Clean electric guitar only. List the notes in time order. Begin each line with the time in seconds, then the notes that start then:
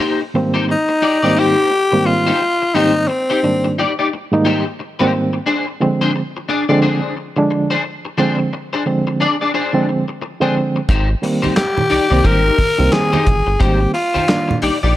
0.00 D#4 G4 C5
0.21 muted clean electric guitar stroke
0.35 muted clean electric guitar stroke
0.54 D#4 G4 C5
0.68 muted clean electric guitar stroke
0.89 muted clean electric guitar stroke
1.02 D#4 G4 D5
1.22 D#4 G4 D5
1.36 D#4 G4 C5
1.71 muted clean electric guitar stroke
1.92 muted clean electric guitar stroke
2.06 muted clean electric guitar stroke
2.27 D#4 G4 C5
2.41 muted clean electric guitar stroke
2.62 muted clean electric guitar stroke
2.75 D#4 G4 C5
2.95 muted clean electric guitar stroke
3.09 muted clean electric guitar stroke
3.30 D#4 G4 C5
3.44 muted clean electric guitar stroke
3.64 muted clean electric guitar stroke
3.78 D#4 G4 D5
3.99 D#4 G4 D5
4.13 muted clean electric guitar stroke
4.33 muted clean electric guitar stroke
4.45 D#4 G4 C5
4.66 muted clean electric guitar stroke
4.79 muted clean electric guitar stroke
4.99 D#4 G4 C5
5.13 muted clean electric guitar stroke
5.33 muted clean electric guitar stroke
5.46 D4 G#4 C5
5.67 muted clean electric guitar stroke
5.81 muted clean electric guitar stroke
6.01 D4 G#4 C5
6.16 muted clean electric guitar stroke
6.37 muted clean electric guitar stroke
6.49 D4 G#4 D5
6.69 D4 G#4 D5
6.82 D4 G#4 C5
7.17 muted clean electric guitar stroke
7.36 muted clean electric guitar stroke
7.51 muted clean electric guitar stroke
7.70 D4 G#4 C5
7.84 muted clean electric guitar stroke
8.05 muted clean electric guitar stroke
8.18 D4 G#4 C5
8.39 muted clean electric guitar stroke
8.53 muted clean electric guitar stroke
8.73 D4 G#4 C5
8.86 muted clean electric guitar stroke
9.07 muted clean electric guitar stroke
9.20 D4 G#4 D5
9.41 D4 G#4 D5
9.54 D4 G#4 C5
9.89 muted clean electric guitar stroke
10.08 muted clean electric guitar stroke
10.21 muted clean electric guitar stroke
10.41 D4 G#4 C5
10.57 muted clean electric guitar stroke
10.76 muted clean electric guitar stroke
10.90 D#4 G4 C5
11.09 muted clean electric guitar stroke
11.23 muted clean electric guitar stroke
11.42 D#4 G4 C5
11.56 muted clean electric guitar stroke
11.77 muted clean electric guitar stroke
11.90 D#4 G4 D5
12.10 D#4 G4 D5
12.24 D#4 G4 C5
12.57 muted clean electric guitar stroke
12.78 muted clean electric guitar stroke
12.92 muted clean electric guitar stroke
13.13 D#4 G4 C5
13.26 muted clean electric guitar stroke
13.47 muted clean electric guitar stroke
13.60 D#4 G4 C5
13.81 muted clean electric guitar stroke
13.94 muted clean electric guitar stroke
14.14 D#4 G4 C5
14.28 muted clean electric guitar stroke
14.48 muted clean electric guitar stroke
14.62 D#4 G4 D5
14.83 D#4 G4 D5